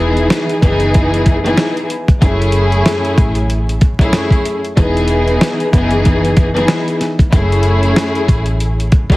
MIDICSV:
0, 0, Header, 1, 4, 480
1, 0, Start_track
1, 0, Tempo, 638298
1, 1667, Time_signature, 4, 2, 24, 8
1, 6894, End_track
2, 0, Start_track
2, 0, Title_t, "String section"
2, 0, Program_c, 0, 48
2, 0, Note_on_c, 0, 52, 96
2, 0, Note_on_c, 0, 59, 98
2, 0, Note_on_c, 0, 63, 92
2, 0, Note_on_c, 0, 64, 88
2, 0, Note_on_c, 0, 68, 113
2, 414, Note_off_c, 0, 52, 0
2, 415, Note_off_c, 0, 59, 0
2, 416, Note_off_c, 0, 63, 0
2, 417, Note_off_c, 0, 64, 0
2, 419, Note_off_c, 0, 68, 0
2, 462, Note_on_c, 0, 52, 108
2, 463, Note_on_c, 0, 59, 98
2, 467, Note_on_c, 0, 63, 101
2, 469, Note_on_c, 0, 64, 84
2, 471, Note_on_c, 0, 68, 122
2, 1026, Note_off_c, 0, 52, 0
2, 1027, Note_off_c, 0, 59, 0
2, 1029, Note_off_c, 0, 63, 0
2, 1030, Note_off_c, 0, 64, 0
2, 1031, Note_off_c, 0, 68, 0
2, 1078, Note_on_c, 0, 52, 100
2, 1080, Note_on_c, 0, 59, 84
2, 1083, Note_on_c, 0, 63, 86
2, 1085, Note_on_c, 0, 64, 82
2, 1087, Note_on_c, 0, 68, 107
2, 1399, Note_off_c, 0, 52, 0
2, 1401, Note_off_c, 0, 59, 0
2, 1402, Note_off_c, 0, 63, 0
2, 1403, Note_off_c, 0, 64, 0
2, 1404, Note_off_c, 0, 68, 0
2, 1660, Note_on_c, 0, 42, 99
2, 1663, Note_on_c, 0, 57, 98
2, 1666, Note_on_c, 0, 61, 91
2, 1668, Note_on_c, 0, 64, 93
2, 1670, Note_on_c, 0, 68, 111
2, 2880, Note_off_c, 0, 42, 0
2, 2882, Note_off_c, 0, 57, 0
2, 2883, Note_off_c, 0, 61, 0
2, 2884, Note_off_c, 0, 64, 0
2, 2885, Note_off_c, 0, 68, 0
2, 3006, Note_on_c, 0, 42, 94
2, 3009, Note_on_c, 0, 57, 87
2, 3011, Note_on_c, 0, 61, 86
2, 3013, Note_on_c, 0, 64, 90
2, 3016, Note_on_c, 0, 68, 108
2, 3441, Note_off_c, 0, 42, 0
2, 3443, Note_off_c, 0, 57, 0
2, 3444, Note_off_c, 0, 61, 0
2, 3445, Note_off_c, 0, 64, 0
2, 3446, Note_off_c, 0, 68, 0
2, 3580, Note_on_c, 0, 52, 94
2, 3583, Note_on_c, 0, 59, 100
2, 3585, Note_on_c, 0, 63, 90
2, 3588, Note_on_c, 0, 64, 91
2, 3590, Note_on_c, 0, 68, 115
2, 4254, Note_off_c, 0, 52, 0
2, 4255, Note_off_c, 0, 59, 0
2, 4256, Note_off_c, 0, 63, 0
2, 4258, Note_off_c, 0, 64, 0
2, 4259, Note_off_c, 0, 68, 0
2, 4302, Note_on_c, 0, 52, 113
2, 4304, Note_on_c, 0, 59, 96
2, 4307, Note_on_c, 0, 63, 96
2, 4309, Note_on_c, 0, 64, 83
2, 4311, Note_on_c, 0, 68, 121
2, 4866, Note_off_c, 0, 52, 0
2, 4867, Note_off_c, 0, 59, 0
2, 4869, Note_off_c, 0, 63, 0
2, 4870, Note_off_c, 0, 64, 0
2, 4871, Note_off_c, 0, 68, 0
2, 4918, Note_on_c, 0, 52, 94
2, 4921, Note_on_c, 0, 59, 85
2, 4923, Note_on_c, 0, 63, 85
2, 4925, Note_on_c, 0, 64, 82
2, 4928, Note_on_c, 0, 68, 102
2, 5240, Note_off_c, 0, 52, 0
2, 5241, Note_off_c, 0, 59, 0
2, 5242, Note_off_c, 0, 63, 0
2, 5243, Note_off_c, 0, 64, 0
2, 5245, Note_off_c, 0, 68, 0
2, 5500, Note_on_c, 0, 42, 96
2, 5502, Note_on_c, 0, 57, 96
2, 5505, Note_on_c, 0, 61, 88
2, 5507, Note_on_c, 0, 64, 95
2, 5510, Note_on_c, 0, 68, 114
2, 6720, Note_off_c, 0, 42, 0
2, 6721, Note_off_c, 0, 57, 0
2, 6722, Note_off_c, 0, 61, 0
2, 6724, Note_off_c, 0, 64, 0
2, 6725, Note_off_c, 0, 68, 0
2, 6847, Note_on_c, 0, 42, 91
2, 6849, Note_on_c, 0, 57, 89
2, 6852, Note_on_c, 0, 61, 81
2, 6854, Note_on_c, 0, 64, 89
2, 6856, Note_on_c, 0, 68, 110
2, 6894, Note_off_c, 0, 42, 0
2, 6894, Note_off_c, 0, 57, 0
2, 6894, Note_off_c, 0, 61, 0
2, 6894, Note_off_c, 0, 64, 0
2, 6894, Note_off_c, 0, 68, 0
2, 6894, End_track
3, 0, Start_track
3, 0, Title_t, "Fingered electric bass"
3, 0, Program_c, 1, 33
3, 0, Note_on_c, 1, 28, 116
3, 198, Note_off_c, 1, 28, 0
3, 471, Note_on_c, 1, 30, 94
3, 1159, Note_off_c, 1, 30, 0
3, 1669, Note_on_c, 1, 30, 107
3, 2118, Note_off_c, 1, 30, 0
3, 2391, Note_on_c, 1, 33, 94
3, 3079, Note_off_c, 1, 33, 0
3, 3590, Note_on_c, 1, 28, 112
3, 4039, Note_off_c, 1, 28, 0
3, 4312, Note_on_c, 1, 30, 94
3, 5000, Note_off_c, 1, 30, 0
3, 5510, Note_on_c, 1, 30, 102
3, 5959, Note_off_c, 1, 30, 0
3, 6232, Note_on_c, 1, 33, 93
3, 6894, Note_off_c, 1, 33, 0
3, 6894, End_track
4, 0, Start_track
4, 0, Title_t, "Drums"
4, 126, Note_on_c, 9, 42, 48
4, 201, Note_off_c, 9, 42, 0
4, 227, Note_on_c, 9, 38, 115
4, 243, Note_on_c, 9, 42, 106
4, 303, Note_off_c, 9, 38, 0
4, 318, Note_off_c, 9, 42, 0
4, 372, Note_on_c, 9, 42, 45
4, 447, Note_off_c, 9, 42, 0
4, 469, Note_on_c, 9, 36, 93
4, 474, Note_on_c, 9, 42, 81
4, 544, Note_off_c, 9, 36, 0
4, 549, Note_off_c, 9, 42, 0
4, 600, Note_on_c, 9, 42, 53
4, 676, Note_off_c, 9, 42, 0
4, 709, Note_on_c, 9, 42, 88
4, 713, Note_on_c, 9, 36, 98
4, 784, Note_off_c, 9, 42, 0
4, 789, Note_off_c, 9, 36, 0
4, 856, Note_on_c, 9, 42, 55
4, 931, Note_off_c, 9, 42, 0
4, 946, Note_on_c, 9, 42, 71
4, 948, Note_on_c, 9, 36, 93
4, 1021, Note_off_c, 9, 42, 0
4, 1023, Note_off_c, 9, 36, 0
4, 1096, Note_on_c, 9, 42, 57
4, 1172, Note_off_c, 9, 42, 0
4, 1184, Note_on_c, 9, 38, 118
4, 1194, Note_on_c, 9, 42, 86
4, 1259, Note_off_c, 9, 38, 0
4, 1269, Note_off_c, 9, 42, 0
4, 1331, Note_on_c, 9, 42, 43
4, 1406, Note_off_c, 9, 42, 0
4, 1429, Note_on_c, 9, 42, 84
4, 1504, Note_off_c, 9, 42, 0
4, 1566, Note_on_c, 9, 36, 89
4, 1573, Note_on_c, 9, 42, 44
4, 1641, Note_off_c, 9, 36, 0
4, 1648, Note_off_c, 9, 42, 0
4, 1667, Note_on_c, 9, 36, 122
4, 1670, Note_on_c, 9, 42, 99
4, 1742, Note_off_c, 9, 36, 0
4, 1745, Note_off_c, 9, 42, 0
4, 1817, Note_on_c, 9, 42, 52
4, 1892, Note_off_c, 9, 42, 0
4, 1897, Note_on_c, 9, 42, 80
4, 1972, Note_off_c, 9, 42, 0
4, 2047, Note_on_c, 9, 42, 49
4, 2123, Note_off_c, 9, 42, 0
4, 2148, Note_on_c, 9, 38, 117
4, 2164, Note_on_c, 9, 42, 100
4, 2224, Note_off_c, 9, 38, 0
4, 2239, Note_off_c, 9, 42, 0
4, 2292, Note_on_c, 9, 42, 43
4, 2367, Note_off_c, 9, 42, 0
4, 2389, Note_on_c, 9, 36, 93
4, 2394, Note_on_c, 9, 42, 80
4, 2464, Note_off_c, 9, 36, 0
4, 2469, Note_off_c, 9, 42, 0
4, 2521, Note_on_c, 9, 42, 55
4, 2596, Note_off_c, 9, 42, 0
4, 2630, Note_on_c, 9, 42, 84
4, 2706, Note_off_c, 9, 42, 0
4, 2777, Note_on_c, 9, 42, 55
4, 2852, Note_off_c, 9, 42, 0
4, 2866, Note_on_c, 9, 42, 69
4, 2869, Note_on_c, 9, 36, 94
4, 2941, Note_off_c, 9, 42, 0
4, 2944, Note_off_c, 9, 36, 0
4, 3000, Note_on_c, 9, 36, 95
4, 3016, Note_on_c, 9, 42, 57
4, 3075, Note_off_c, 9, 36, 0
4, 3091, Note_off_c, 9, 42, 0
4, 3105, Note_on_c, 9, 38, 116
4, 3114, Note_on_c, 9, 42, 85
4, 3180, Note_off_c, 9, 38, 0
4, 3189, Note_off_c, 9, 42, 0
4, 3238, Note_on_c, 9, 36, 84
4, 3251, Note_on_c, 9, 42, 42
4, 3313, Note_off_c, 9, 36, 0
4, 3326, Note_off_c, 9, 42, 0
4, 3350, Note_on_c, 9, 42, 83
4, 3425, Note_off_c, 9, 42, 0
4, 3494, Note_on_c, 9, 42, 45
4, 3569, Note_off_c, 9, 42, 0
4, 3588, Note_on_c, 9, 36, 126
4, 3591, Note_on_c, 9, 42, 94
4, 3663, Note_off_c, 9, 36, 0
4, 3666, Note_off_c, 9, 42, 0
4, 3737, Note_on_c, 9, 42, 54
4, 3812, Note_off_c, 9, 42, 0
4, 3817, Note_on_c, 9, 42, 76
4, 3893, Note_off_c, 9, 42, 0
4, 3967, Note_on_c, 9, 42, 49
4, 4043, Note_off_c, 9, 42, 0
4, 4069, Note_on_c, 9, 38, 119
4, 4085, Note_on_c, 9, 42, 102
4, 4145, Note_off_c, 9, 38, 0
4, 4160, Note_off_c, 9, 42, 0
4, 4213, Note_on_c, 9, 42, 43
4, 4288, Note_off_c, 9, 42, 0
4, 4310, Note_on_c, 9, 36, 91
4, 4315, Note_on_c, 9, 42, 84
4, 4385, Note_off_c, 9, 36, 0
4, 4390, Note_off_c, 9, 42, 0
4, 4441, Note_on_c, 9, 42, 54
4, 4516, Note_off_c, 9, 42, 0
4, 4551, Note_on_c, 9, 42, 87
4, 4555, Note_on_c, 9, 36, 99
4, 4626, Note_off_c, 9, 42, 0
4, 4630, Note_off_c, 9, 36, 0
4, 4697, Note_on_c, 9, 42, 55
4, 4773, Note_off_c, 9, 42, 0
4, 4787, Note_on_c, 9, 42, 72
4, 4790, Note_on_c, 9, 36, 94
4, 4863, Note_off_c, 9, 42, 0
4, 4865, Note_off_c, 9, 36, 0
4, 4938, Note_on_c, 9, 42, 58
4, 5013, Note_off_c, 9, 42, 0
4, 5025, Note_on_c, 9, 38, 115
4, 5035, Note_on_c, 9, 42, 85
4, 5100, Note_off_c, 9, 38, 0
4, 5110, Note_off_c, 9, 42, 0
4, 5172, Note_on_c, 9, 42, 45
4, 5248, Note_off_c, 9, 42, 0
4, 5270, Note_on_c, 9, 38, 36
4, 5270, Note_on_c, 9, 42, 79
4, 5345, Note_off_c, 9, 38, 0
4, 5346, Note_off_c, 9, 42, 0
4, 5408, Note_on_c, 9, 36, 92
4, 5415, Note_on_c, 9, 42, 46
4, 5483, Note_off_c, 9, 36, 0
4, 5490, Note_off_c, 9, 42, 0
4, 5508, Note_on_c, 9, 36, 120
4, 5512, Note_on_c, 9, 42, 94
4, 5584, Note_off_c, 9, 36, 0
4, 5587, Note_off_c, 9, 42, 0
4, 5657, Note_on_c, 9, 42, 51
4, 5733, Note_off_c, 9, 42, 0
4, 5737, Note_on_c, 9, 42, 78
4, 5812, Note_off_c, 9, 42, 0
4, 5887, Note_on_c, 9, 42, 49
4, 5962, Note_off_c, 9, 42, 0
4, 5988, Note_on_c, 9, 38, 114
4, 6004, Note_on_c, 9, 42, 100
4, 6064, Note_off_c, 9, 38, 0
4, 6079, Note_off_c, 9, 42, 0
4, 6132, Note_on_c, 9, 42, 43
4, 6207, Note_off_c, 9, 42, 0
4, 6230, Note_on_c, 9, 36, 91
4, 6234, Note_on_c, 9, 42, 84
4, 6305, Note_off_c, 9, 36, 0
4, 6310, Note_off_c, 9, 42, 0
4, 6360, Note_on_c, 9, 42, 54
4, 6435, Note_off_c, 9, 42, 0
4, 6470, Note_on_c, 9, 42, 86
4, 6545, Note_off_c, 9, 42, 0
4, 6617, Note_on_c, 9, 42, 54
4, 6692, Note_off_c, 9, 42, 0
4, 6707, Note_on_c, 9, 42, 69
4, 6709, Note_on_c, 9, 36, 95
4, 6782, Note_off_c, 9, 42, 0
4, 6784, Note_off_c, 9, 36, 0
4, 6841, Note_on_c, 9, 36, 98
4, 6857, Note_on_c, 9, 42, 53
4, 6894, Note_off_c, 9, 36, 0
4, 6894, Note_off_c, 9, 42, 0
4, 6894, End_track
0, 0, End_of_file